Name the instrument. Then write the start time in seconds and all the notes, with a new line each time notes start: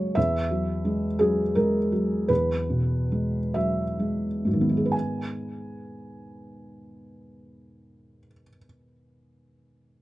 felt piano
Already playing: F#2 C#3 F#3 G#3 A#3 A#4 C#5
0.15 E2 E5
0.51 F#3
0.85 G#3
1.19 F#3 G#4
1.55 G#3 A#4
1.92 F#3
2.28 E2 B4
2.70 B2
3.12 G#3
3.54 F#3 E5
3.99 G#3
4.45 G#2 F#3
4.53 D#3
4.61 B3
4.69 D#4
4.77 G#4
4.85 B4
4.92 G#5